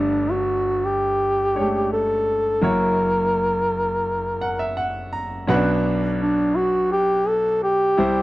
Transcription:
0.00 2.23 G1 medium
0.00 2.23 G2 medium
0.00 1.52 G3 medium
0.00 1.51 A3 medium
0.00 0.33 D4 medium
0.00 1.51 D4 medium
0.00 1.52 D5 medium
0.31 0.87 F#4 medium
0.85 1.92 G4 loud
1.55 1.62 G#3 soft
1.55 2.63 D4 soft
1.55 2.63 G4 soft
1.55 2.62 C#5 medium
1.61 2.66 A3 soft
1.92 2.65 A4 loud
2.61 5.44 F#1 medium
2.61 5.44 F#2 medium
2.61 5.44 A#3 medium
2.61 5.44 E4 medium
2.61 5.45 F#4 medium
2.61 4.77 A#4 loud
2.61 5.45 C#5 medium
4.41 4.58 F#5 medium
4.59 4.76 E5 medium
4.77 5.10 F#5 medium
5.13 5.46 A#5 medium
5.47 7.95 B1 medium
5.47 7.95 B2 medium
5.47 5.54 C#4 medium
5.47 7.95 B4 medium
5.47 7.94 F#5 medium
5.54 7.97 D4 medium
6.21 6.58 D4 medium
6.56 6.91 F#4 loud
6.92 7.29 G4 loud
7.28 7.63 A4 loud
7.63 8.22 G4 loud
7.97 8.22 C2 medium
7.97 8.22 C3 medium
7.97 8.22 G3 medium
7.97 8.22 E4 medium
7.97 8.22 C5 medium

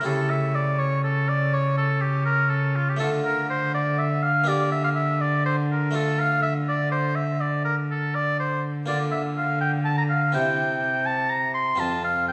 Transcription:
0.01 2.94 A3 soft
0.01 2.95 E4 medium
0.01 2.96 G4 soft
0.05 3.02 C#3 medium
0.05 2.97 C#3 soft
0.05 0.32 A4 medium
0.30 0.57 E5 loud
0.55 0.80 D5 medium
0.79 1.03 C#5 medium
1.04 1.31 A4 medium
1.29 1.55 D5 loud
1.54 1.77 C#5 medium
1.77 2.03 A4 medium
2.01 2.25 G4 medium
2.25 2.52 A#4 loud
2.50 2.77 A4 medium
2.76 2.91 F4 medium
2.89 2.99 G4 medium
2.97 8.88 D3 medium
2.97 4.42 A3 medium
2.97 4.42 D4 soft
2.97 4.43 F4 soft
2.97 3.11 A4 medium
3.01 8.84 D3 medium
3.25 3.49 A#4 loud
3.50 3.74 C5 medium
3.74 4.00 D5 loud
3.99 4.25 E5 medium
4.23 4.50 F5 medium
4.44 5.89 A#3 medium
4.44 5.89 D4 soft
4.44 5.90 G4 medium
4.48 4.71 D5 medium
4.72 4.84 E5 loud
4.84 4.90 F5 loud
4.96 5.23 E5 medium
5.21 5.45 D5 medium
5.46 5.57 C5 medium
5.72 5.97 A#4 medium
5.91 8.82 A3 soft
5.91 8.83 D4 soft
5.91 8.84 F4 medium
5.96 6.21 A4 medium
6.20 6.42 F5 loud
6.43 6.54 E5 loud
6.69 6.91 D5 loud
6.92 7.17 C5 medium
7.16 7.42 E5 loud
7.41 7.64 D5 medium
7.65 7.76 A#4 medium
7.91 8.17 A4 medium
8.15 8.39 D5 loud
8.40 8.64 C5 medium
8.86 10.36 D3 medium
8.86 10.30 D3 medium
8.86 10.29 A#3 soft
8.86 10.30 F4 medium
8.86 8.99 D5 medium
9.11 9.22 E5 medium
9.38 9.60 F5 medium
9.61 9.72 G5 loud
9.85 9.97 A5 medium
9.98 10.03 A#5 medium
10.10 10.34 F5 medium
10.32 11.76 C3 medium
10.32 11.80 C3 medium
10.32 11.74 C4 medium
10.32 11.75 E4 soft
10.32 11.08 G5 loud
11.06 11.32 A5 loud
11.30 11.54 A#5 medium
11.54 11.81 C6 loud
11.76 12.32 C4 soft
11.76 12.32 F4 soft
11.80 12.32 F2 medium
11.80 12.03 A5 medium
12.04 12.28 F5 medium
12.29 12.32 G5 medium

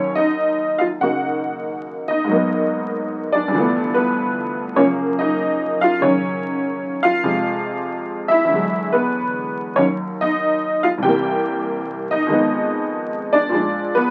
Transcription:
0.00 2.29 D#2 soft
0.00 2.29 D#3 soft
0.00 2.26 F#3 soft
0.00 0.13 C#4 medium
0.00 0.17 C#5 medium
0.15 0.78 D#4 medium
0.15 0.82 D#5 medium
0.78 0.86 F4 medium
0.78 0.83 F5 medium
1.00 2.28 C#3 soft
1.00 2.30 A#3 soft
1.00 2.09 D#4 soft
1.00 2.06 F#4 medium
1.00 2.05 F#5 medium
2.08 3.31 D#4 medium
2.08 3.37 D#5 medium
2.24 3.51 G#2 soft
2.24 3.53 F#3 soft
2.31 3.55 A#3 soft
2.31 3.56 B3 soft
3.32 3.92 D4 medium
3.32 3.91 D5 medium
3.48 4.75 G2 medium
3.48 4.77 D3 soft
3.54 4.78 E3 soft
3.54 4.76 F3 soft
3.54 4.80 A3 soft
3.60 3.95 B3 medium
3.94 4.74 B3 medium
3.94 4.73 B4 medium
4.76 7.23 F#2 medium
4.76 5.98 C#3 soft
4.76 7.23 F3 soft
4.76 7.24 A#3 medium
4.76 4.88 C#4 medium
4.76 4.86 C#5 medium
5.19 5.78 D#4 medium
5.19 5.83 D#5 medium
5.81 6.01 F4 medium
5.81 6.00 F5 medium
5.99 7.23 C#3 soft
5.99 7.24 D#3 soft
5.99 7.24 F#3 soft
5.99 7.07 C#5 medium
6.04 7.01 C#4 medium
7.03 8.26 F4 medium
7.03 8.25 F5 medium
7.23 8.49 F2 medium
7.23 8.49 C3 soft
7.23 8.50 F3 soft
7.23 8.50 G#3 medium
8.28 8.90 E4 medium
8.28 8.94 E5 medium
8.45 9.75 E2 soft
8.45 9.77 D3 soft
8.52 9.76 F#3 soft
8.52 9.80 G#3 soft
8.93 9.74 B3 medium
8.93 9.80 B4 medium
9.76 11.03 D#2 soft
9.76 11.04 D#3 soft
9.76 11.04 F#3 soft
9.76 9.87 C#4 medium
9.76 9.86 C#5 medium
10.21 10.80 D#4 medium
10.21 10.86 D#5 medium
10.83 10.89 F4 medium
10.83 10.88 F5 medium
10.98 12.27 C2 medium
10.98 12.29 C3 soft
11.03 12.31 E3 soft
11.03 12.06 G4 medium
11.03 12.06 G5 medium
11.08 12.33 A#3 medium
12.11 13.32 D#4 medium
12.11 13.39 D#5 medium
12.27 13.52 F2 medium
12.27 13.53 D#3 soft
12.27 13.52 G#3 soft
12.32 13.55 B3 medium
13.33 13.54 D4 medium
13.33 13.96 D5 medium
13.49 14.11 A#2 soft
13.49 14.11 F3 soft
13.54 14.11 G#3 soft
13.54 14.11 D4 medium
13.95 14.11 B3 medium
13.95 14.11 B4 medium

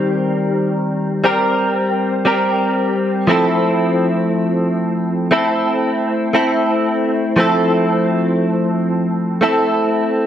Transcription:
0.00 1.24 D#3 medium
0.00 1.23 G3 loud
0.00 1.24 C4 loud
0.00 1.24 G4 medium
0.00 1.25 A#4 loud
1.24 2.24 G3 medium
1.24 2.25 C4 medium
1.24 2.25 G4 medium
1.24 2.26 A#4 medium
2.25 3.28 G3 medium
2.25 3.29 C4 medium
2.25 3.28 G4 medium
2.25 3.29 A#4 medium
3.27 5.35 F3 loud
3.27 5.31 A3 loud
3.27 5.31 C4 loud
3.27 5.32 E4 loud
3.27 5.33 A4 loud
5.31 6.33 A3 medium
5.31 6.34 C4 medium
5.31 6.34 E4 medium
5.31 6.35 A4 medium
6.33 7.37 A3 medium
6.33 7.38 C4 medium
6.33 7.39 E4 medium
6.33 7.39 A4 medium
7.36 9.46 F3 medium
7.36 9.41 A3 medium
7.36 9.42 C4 loud
7.36 9.42 E4 medium
7.36 9.43 A4 loud
9.41 10.27 A3 medium
9.41 10.27 C4 medium
9.41 10.27 E4 medium
9.41 10.27 A4 medium

